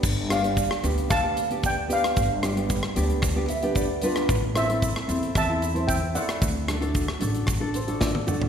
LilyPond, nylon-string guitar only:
\new Staff \with { instrumentName = "Nylon-string guitar" } { \time 4/4 \key g \mixolydian \tempo 4 = 113 << { r1 | r2 r8 e''8 d''8 b'8 | r1 | r2 r8 c''8 d''8 fis''8 | } \\ { r8 <b d' g'>16 <b d' g'>8 r16 <b d' g'>8 r16 <b d' g'>16 r16 <b d' g'>8 r16 <b d' g'>8 | r8 <b d' g'>16 <b d' g'>8 r16 <b d' g'>8 r16 <b d' g'>16 r16 <b d' g'>8 r16 <b d' f'>8 | r8 <c' e' a'>16 <c' e' a'>8 r16 <c' e' a'>8 r16 <c' e' a'>16 r16 <c' e' c''>8 r16 <c' e' a'>8 | r8 <d' fis' a'>16 <d' fis' a'>8 r16 <d' fis' a'>8 r16 <d' fis' a'>16 r16 <d' fis' a'>8 r16 <d' fis' a'>8 | } >> }